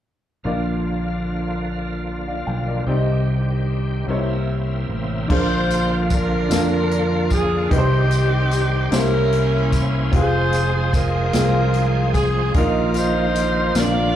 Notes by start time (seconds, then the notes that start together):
0.44 A#1 A#2 D3 F3 A#3 D4 F4 D5
2.28 D5 F5
2.47 B1 G5
2.68 A#4 D5
2.87 C2 C3 D#3 G3 C4 D#4 G4 D5
2.96 D#5
4.08 C2 C3 A#3 C4 D#4 E4 A#4 C#5
4.15 E4
4.89 A1
5.28 A#1 A#2 D3 F3 A#3 D4 F4 G#4 C5, kick, crash
5.38 A#4
5.70 closed hi-hat, tambourine
6.10 D4 F4 A#4, kick, closed hi-hat, tambourine
6.48 F2 D4 F4 A4, snare, closed hi-hat, tambourine
6.58 A#4
6.91 closed hi-hat
7.30 G#4, kick, closed hi-hat, tambourine
7.69 C2 C3 D#3 G3 C4 D#4 G4 B4 C5, kick, closed hi-hat
7.78 C5
8.11 closed hi-hat, tambourine
8.51 closed hi-hat, tambourine
8.91 C2 C3 A#3 C#4 E4 G4 A#4 C5, snare, closed hi-hat, tambourine
8.95 C#4
9.32 closed hi-hat
9.72 kick, closed hi-hat, tambourine
10.12 F1 F3 G#3 C4 F4 G4 G#4 C5, kick, closed hi-hat
10.21 G#4
10.53 closed hi-hat, tambourine
10.93 F4 A#4, kick, closed hi-hat, tambourine
11.33 C2 C4 F4 G#4, snare, closed hi-hat, tambourine
11.74 closed hi-hat
12.14 G#4, kick, closed hi-hat, tambourine
12.54 A#1 A#2 D#3 A#3 D4 D#4 F4 A#4, kick, closed hi-hat
12.61 D#4
12.94 D#4 F4 C5, closed hi-hat, tambourine
13.35 closed hi-hat, tambourine
13.75 A#1 A#2 D3 F3 C4 F4 A#4 D5, snare, closed hi-hat, tambourine
13.82 D4